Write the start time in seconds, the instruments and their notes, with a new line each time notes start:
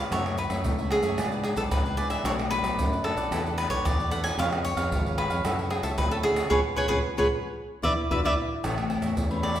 Already playing: cavaquinho B4 C#5 F5
0.11 fingered electric bass F#2, nylon-string guitar F#2 E3 A3 C#4, cavaquinho F#4 A4 C#5 E5, pandeiro, tamborim, maracas, surdo
0.26 nylon-string guitar E3 A3 C#4, cavaquinho A4 C#5 E5, pandeiro, tamborim, maracas
0.38 cavaquinho B4, muted cavaquinho stroke, pandeiro, maracas, surdo
0.50 fingered electric bass F#2, nylon-string guitar E3 A3 C#4, cavaquinho A4 C#5 E5, pandeiro, tamborim, maracas, surdo
0.64 fingered electric bass C#2, nylon-string guitar C#3, pandeiro, maracas, surdo
0.79 cavaquinho A4 C#5 E5, pandeiro, maracas
0.91 nylon-string guitar E3 A3 C#4, cavaquinho F#4 G#4 A4 C#5 E5, pandeiro, tamborim
1.03 fingered electric bass F#2, cavaquinho A4 C#5 E5, pandeiro, maracas, surdo
1.18 fingered electric bass G#2, nylon-string guitar G#2 E3 B3 D4, cavaquinho E4 G#4 B4 D5, pandeiro, tamborim, maracas, surdo
1.32 nylon-string guitar E3 B3 D4, cavaquinho G#4 B4 D5, pandeiro, maracas
1.44 cavaquinho G#4, muted cavaquinho stroke, pandeiro, tamborim
1.56 fingered electric bass B1, nylon-string guitar E3 B3 D4, cavaquinho G#4 A4 B4 D5, pandeiro, maracas, surdo
1.71 fingered electric bass C#2, nylon-string guitar G#2, cavaquinho B4, pandeiro, tamborim, maracas, surdo
1.86 cavaquinho G#4 B4 D5, pandeiro, maracas
1.97 nylon-string guitar E3 B3 D4, cavaquinho E4 G#4 B4 D5, pandeiro, maracas, surdo
2.10 cavaquinho E5, pandeiro, tamborim, maracas
2.24 fingered electric bass B1, nylon-string guitar B2 F#3 A3 D4, cavaquinho D4 A4 B4 C#5 D5, pandeiro, tamborim, maracas, surdo
2.38 nylon-string guitar F#3 A3 D4, cavaquinho A4 B4 D5, pandeiro, tamborim, maracas
2.51 cavaquinho B4, muted cavaquinho stroke, pandeiro, maracas, surdo
2.62 fingered electric bass B1, nylon-string guitar F#3 A3 D4, cavaquinho A4 B4 D5, pandeiro, tamborim, maracas, surdo
2.78 fingered electric bass F#2, nylon-string guitar F#2, pandeiro, maracas, surdo
2.92 cavaquinho A4 B4 D5, pandeiro, maracas
3.04 nylon-string guitar F#3 A3 D4, cavaquinho D4 A4 B4 D5, pandeiro, tamborim
3.16 fingered electric bass B1, cavaquinho A4 B4 D5, pandeiro, maracas, surdo
3.31 fingered electric bass E2, nylon-string guitar E3 B3 D4 A4, cavaquinho E4 A4 B4 D5, pandeiro, tamborim, maracas, surdo
3.45 nylon-string guitar B3 D4 A4, cavaquinho A4 B4 D5, pandeiro, maracas
3.57 cavaquinho B4, muted cavaquinho stroke, pandeiro, tamborim, maracas
3.69 fingered electric bass B1, nylon-string guitar B3 D4 A4, cavaquinho A4 B4 C#5 D5, pandeiro, maracas, surdo
3.84 fingered electric bass E2, nylon-string guitar B2, cavaquinho D5, pandeiro, tamborim, maracas, surdo
3.98 cavaquinho A4 B4 D5, pandeiro, maracas
4.10 nylon-string guitar B3 D4 A4, cavaquinho E4 A4 B4 D5 F#5, pandeiro, maracas
4.24 cavaquinho G#5, pandeiro, tamborim, maracas
4.38 fingered electric bass F2, nylon-string guitar F3 B3 C#4 G#4, cavaquinho F4 B4 C#5 F5, pandeiro, tamborim, maracas, surdo
4.53 cavaquinho B4 C#5 F5, pandeiro, tamborim, maracas
4.65 cavaquinho C#5, muted cavaquinho stroke, pandeiro, maracas, surdo
4.76 fingered electric bass F2, nylon-string guitar B3 C#4 G#4, cavaquinho B4 C#5 F5, pandeiro, tamborim, maracas, surdo
4.91 fingered electric bass G#1, nylon-string guitar F3, pandeiro, maracas, surdo
5.06 cavaquinho B4 C#5 F5, pandeiro, maracas
5.18 nylon-string guitar B3 C#4 G#4, cavaquinho F4 B4 C#5 F5, pandeiro, tamborim
5.30 fingered electric bass F2, cavaquinho B4 C#5 F5, pandeiro, maracas, surdo
5.45 fingered electric bass F#2, nylon-string guitar F#3 C#4 E4 A4, cavaquinho F#4 A4 C#5 E5, pandeiro, tamborim, maracas, surdo
5.59 cavaquinho A4 C#5 E5, pandeiro, maracas
5.70 cavaquinho G#4, muted cavaquinho stroke, pandeiro, tamborim
5.83 fingered electric bass C#2, nylon-string guitar C#4 E4 A4, cavaquinho A4 C#5 E5, pandeiro, maracas, surdo
5.97 fingered electric bass D2, nylon-string guitar C#3, cavaquinho B4, pandeiro, tamborim, maracas, surdo
6.11 cavaquinho A4 C#5 E5, pandeiro, maracas
6.23 nylon-string guitar C#4 E4 A4, cavaquinho F#4 G#4 A4 C#5 E5, pandeiro, surdo
6.36 pandeiro, tamborim, maracas
6.50 fingered electric bass C#2, nylon-string guitar B3 C#4 F4, cavaquinho G#4 B4 C#5, surdo
6.76 fingered electric bass C#2, nylon-string guitar B3 C#4 F4, cavaquinho G#4 B4 C#5, surdo
6.88 fingered electric bass C#2, nylon-string guitar B3 C#4 F4, cavaquinho G#4 B4 C#5, surdo
7.17 fingered electric bass C#2, nylon-string guitar B3 C#4 F4, cavaquinho G#4 B4 C#5, surdo
7.82 fingered electric bass E2, nylon-string guitar B3 D4 E4, trombone E4, cavaquinho B4 D5 E5, surdo
8.11 fingered electric bass E2, nylon-string guitar B3 D4 E4, trombone F#4, cavaquinho B4 D5 E5, surdo
8.24 fingered electric bass E2, nylon-string guitar B3 D4 E4, trombone E4, cavaquinho B4 D5 E5, surdo
8.64 fingered electric bass A1, nylon-string guitar A2 E3 A3 C#4, cavaquinho E4 A4 C#5 E5, pandeiro, tamborim, low agogo, maracas, surdo
8.77 cavaquinho A4 C#5 E5, pandeiro, tamborim, maracas
8.89 nylon-string guitar E3 A3 C#4, muted cavaquinho stroke, pandeiro, low agogo, surdo
9.02 fingered electric bass E2, cavaquinho A4 C#5 E5, pandeiro, tamborim, maracas, surdo
9.17 fingered electric bass E2, nylon-string guitar E3, pandeiro, maracas, surdo
9.30 nylon-string guitar E3 A3 C#4, cavaquinho A4 C#5 E5, pandeiro, high agogo, maracas
9.42 cavaquinho E4 A4 C#5 D5 E5, pandeiro, tamborim, high agogo
9.55 cavaquinho A4 C#5 E5, pandeiro, maracas, surdo